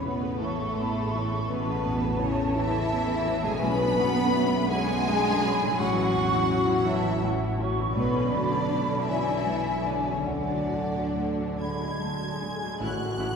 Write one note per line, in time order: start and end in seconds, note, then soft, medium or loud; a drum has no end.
0.00 1.46 A1 medium
0.00 3.64 A1 medium
0.00 0.27 E2 soft
0.00 3.01 A2 soft
0.00 0.42 B2 medium
0.00 0.21 E3 soft
0.00 3.06 B3 soft
0.00 0.20 B3 medium
0.00 0.41 B3 medium
0.00 3.10 E4 soft
0.00 0.40 B4 medium
0.00 3.15 C#5 soft
0.00 0.18 B5 medium
0.06 0.39 E4 soft
0.06 0.39 C#5 soft
0.20 0.41 C#3 medium
0.20 0.40 A3 soft
0.39 1.50 A2 medium
0.39 0.59 E3 medium
0.39 1.50 A3 medium
0.39 1.35 A3 medium
0.39 0.59 B3 medium
0.39 0.75 E4 soft
0.39 1.47 A4 medium
0.39 0.75 C#5 medium
0.39 0.78 C#6 medium
0.58 0.78 C#3 medium
0.58 0.78 A3 soft
0.76 0.94 E3 soft
0.76 0.94 B3 soft
0.76 1.37 B3 soft
0.76 1.14 B5 medium
0.94 1.13 C#3 medium
0.94 1.13 A3 soft
1.11 1.31 E3 medium
1.11 1.31 B3 medium
1.11 1.50 C#6 medium
1.15 1.47 E4 soft
1.15 1.47 C#5 soft
1.32 1.50 C#3 medium
1.32 1.50 A3 medium
1.48 3.59 A1 medium
1.48 2.20 B2 medium
1.48 1.66 E3 medium
1.48 2.19 B3 medium
1.48 1.66 B3 medium
1.48 2.21 B4 loud
1.48 3.63 A5 medium
1.52 2.21 B3 medium
1.68 1.86 C#3 medium
1.68 1.86 A3 medium
1.85 2.42 E2 soft
1.85 2.03 E3 medium
1.85 2.04 B3 medium
2.04 2.21 C#3 medium
2.04 2.21 A3 medium
2.18 2.55 C#3 medium
2.18 2.37 E3 medium
2.18 2.37 B3 medium
2.18 2.56 C#4 medium
2.18 2.55 C#4 medium
2.18 2.52 E4 soft
2.18 2.55 C#5 medium
2.18 2.53 C#5 medium
2.37 2.55 C#3 medium
2.37 2.55 A3 medium
2.53 3.43 E3 medium
2.53 2.73 E3 medium
2.53 2.73 B3 medium
2.53 3.45 E4 medium
2.53 2.88 E4 medium
2.53 2.88 C#5 medium
2.53 3.46 E5 loud
2.70 2.90 C#3 medium
2.70 2.90 A3 medium
2.89 3.08 E3 medium
2.89 3.07 B3 medium
2.89 3.49 B3 medium
3.07 3.27 C#3 medium
3.07 3.27 A3 medium
3.25 3.45 E3 medium
3.25 3.45 B3 medium
3.25 3.60 E4 soft
3.25 3.60 C#5 medium
3.44 5.73 B2 medium
3.44 3.63 C#3 medium
3.44 3.64 G#3 medium
3.44 3.63 A3 medium
3.44 3.63 G#4 medium
3.44 3.64 G#4 medium
3.44 3.64 G#5 medium
3.50 5.65 F#3 medium
3.55 5.77 D4 medium
3.59 5.75 B1 medium
3.59 3.80 F#3 medium
3.59 3.80 C#4 medium
3.59 4.67 B4 loud
3.59 4.71 B5 loud
3.59 7.49 C#6 medium
3.64 5.75 B1 medium
3.64 4.72 B3 loud
3.64 4.70 B4 medium
3.64 4.00 G#5 medium
3.80 3.99 D3 medium
3.80 3.99 D4 medium
3.98 4.57 F#2 medium
3.98 4.17 F#3 medium
3.98 4.17 C#4 medium
3.98 4.34 F#5 medium
4.15 4.34 D3 medium
4.15 4.34 D4 medium
4.33 4.51 F#3 medium
4.33 4.51 C#4 medium
4.33 4.68 D4 medium
4.33 4.68 C#5 soft
4.33 4.71 E5 medium
4.51 4.71 D3 medium
4.51 4.71 D4 medium
4.68 4.88 F#3 medium
4.68 5.78 G#3 loud
4.68 5.79 G#3 loud
4.68 4.88 C#4 medium
4.68 5.04 D4 medium
4.68 5.79 G#4 loud
4.68 5.08 F#5 medium
4.68 5.76 G#5 loud
4.73 5.05 C#5 medium
4.87 5.07 D3 medium
4.87 5.07 D4 medium
5.06 5.24 F#3 medium
5.06 5.65 F#3 medium
5.06 5.24 C#4 medium
5.06 5.44 A5 medium
5.24 5.43 D3 medium
5.24 5.43 D4 medium
5.42 5.61 F#3 medium
5.42 5.61 C#4 medium
5.42 5.76 D4 medium
5.42 5.76 C#5 medium
5.42 5.79 B5 medium
5.59 7.90 A2 medium
5.59 5.78 D3 medium
5.59 5.78 D4 medium
5.66 7.82 F#3 medium
5.70 7.94 E4 medium
5.75 5.94 F#3 medium
5.75 5.94 C#4 medium
5.75 6.83 F#4 medium
5.75 6.84 F#4 medium
5.75 9.65 E5 medium
5.79 7.92 A1 medium
5.79 6.84 F#3 medium
5.79 6.86 F#5 loud
5.79 6.59 C#6 loud
5.94 6.13 E3 medium
5.94 6.13 E4 medium
6.12 6.71 E2 medium
6.12 6.31 F#3 medium
6.12 6.31 C#4 medium
6.30 6.49 E3 medium
6.30 6.49 E4 medium
6.49 6.67 F#3 medium
6.49 6.66 C#4 medium
6.49 6.83 E4 soft
6.49 6.83 C#5 medium
6.66 6.85 E3 medium
6.66 6.85 E4 medium
6.85 7.23 E3 medium
6.85 7.04 F#3 medium
6.85 7.04 C#4 medium
6.85 7.22 E4 medium
6.85 7.19 E4 medium
6.85 7.23 E4 medium
6.85 7.19 C#5 medium
6.85 7.23 E5 medium
6.85 7.23 A5 medium
7.03 7.22 E3 medium
7.03 7.22 E4 medium
7.23 7.81 F#3 medium
7.23 7.40 F#3 medium
7.23 7.40 C#4 medium
7.23 7.60 F#5 medium
7.41 7.60 E3 medium
7.41 7.59 E4 medium
7.59 7.78 F#3 medium
7.59 7.78 C#4 medium
7.59 7.92 E4 medium
7.59 7.92 C#5 soft
7.59 7.96 C#6 medium
7.79 10.24 B2 medium
7.79 7.96 E3 medium
7.79 7.96 E4 medium
7.83 10.15 F#3 soft
7.88 10.19 D4 soft
7.93 10.25 B1 medium
7.93 8.29 B2 medium
7.93 8.13 F#3 medium
7.93 8.13 B3 medium
7.93 8.29 B3 medium
7.93 8.30 B3 medium
7.93 8.29 B4 loud
7.93 10.24 D5 medium
7.93 9.05 B5 loud
8.14 8.32 D3 medium
8.14 8.32 C#4 medium
8.31 8.91 F#2 soft
8.31 9.07 D3 medium
8.31 8.50 F#3 medium
8.31 8.50 B3 medium
8.31 9.07 D4 medium
8.31 9.08 D4 medium
8.31 9.07 D5 loud
8.49 8.68 D3 medium
8.49 8.68 C#4 medium
8.66 8.85 F#3 medium
8.66 8.85 B3 medium
8.66 9.03 D4 soft
8.66 9.03 D5 soft
8.86 9.06 D3 medium
8.86 9.06 C#4 medium
9.05 9.87 E3 medium
9.05 9.25 F#3 medium
9.05 9.26 B3 medium
9.05 9.42 D4 soft
9.05 9.86 E4 medium
9.05 9.42 C#5 medium
9.05 9.87 E5 medium
9.05 10.26 G#5 medium
9.10 9.88 E4 medium
9.25 9.46 D3 soft
9.25 9.46 C#4 soft
9.46 10.11 F#3 soft
9.46 9.65 F#3 soft
9.46 9.65 B3 soft
9.67 9.87 D3 soft
9.67 9.87 C#4 soft
9.86 10.07 D3 medium
9.86 10.08 F#3 medium
9.86 10.08 B3 medium
9.86 10.24 D4 soft
9.86 10.08 D4 medium
9.86 10.25 C#5 soft
9.86 10.08 D5 medium
10.07 10.29 C#3 medium
10.07 10.28 D3 soft
10.07 12.75 D3 soft
10.07 10.29 C#4 medium
10.07 10.29 C#4 soft
10.07 10.29 C#4 medium
10.07 10.29 C#5 medium
10.16 12.77 F#3 soft
10.20 12.80 D4 soft
10.25 12.76 D2 medium
10.25 12.60 D2 medium
10.25 12.37 D3 medium
10.25 10.49 D3 medium
10.25 12.82 D5 soft
10.25 11.50 F#5 medium
10.29 10.49 A3 medium
10.29 11.59 D4 medium
10.29 12.42 D4 medium
10.29 11.59 D5 medium
10.51 10.72 F#3 soft
10.51 10.72 D4 soft
10.70 11.41 A2 soft
10.70 10.94 D3 soft
10.70 10.94 A3 soft
10.94 11.16 F#3 soft
10.94 11.16 D4 soft
11.15 11.37 D3 soft
11.15 11.37 A3 soft
11.15 11.54 D4 soft
11.15 11.54 D5 soft
11.39 11.60 F#3 soft
11.39 11.60 D4 soft
11.58 11.80 D3 soft
11.58 12.77 G#3 medium
11.58 11.80 A3 medium
11.58 11.96 D4 soft
11.58 11.96 D5 soft
11.58 11.97 B5 medium
11.58 12.77 G#6 medium
11.81 12.01 F#3 soft
11.81 12.01 D4 soft
12.00 12.20 D3 soft
12.00 12.65 F#3 soft
12.00 12.20 A3 soft
12.00 12.41 A5 medium
12.22 12.42 F#3 soft
12.22 12.42 D4 soft
12.40 12.62 D3 soft
12.40 12.62 A3 soft
12.40 12.77 D4 soft
12.40 12.77 D5 soft
12.40 12.80 G#5 soft
12.61 12.80 F#3 soft
12.61 12.80 D4 soft
12.79 12.88 A1 medium
12.79 12.88 A2 medium
12.79 13.36 A2 medium
12.79 12.87 C#4 medium
12.79 12.88 E4 medium
12.79 12.89 E4 medium
12.79 13.36 F#4 medium
12.79 12.89 A4 medium
12.79 13.36 F#6 medium
12.79 tam-tam medium
13.18 13.26 A1 medium
13.18 13.26 A2 medium
13.18 13.26 C#4 medium
13.18 13.26 E4 medium
13.18 13.36 E4 medium
13.18 13.28 E4 medium
13.18 13.29 A4 medium